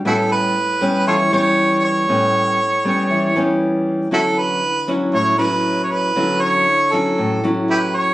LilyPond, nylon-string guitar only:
\new Staff \with { instrumentName = "Nylon-string guitar" } { \time 4/4 \key d \major \tempo 4 = 118 << { <g b cis'>4 r8 <g b cis'>4 <g b cis'>4. | <g b cis'>4 r8 <g b cis'>4 <g b cis'>4. | <fis cis' e'>4 r8 <fis cis' e'>4 <fis cis' e'>4. | <fis cis' e'>4 r8 <fis cis' e'>4 <fis cis' e'>4. | } \\ { a,2 e2 | a,2 e2 | d2 a,2 | d2 a,2 | } >> }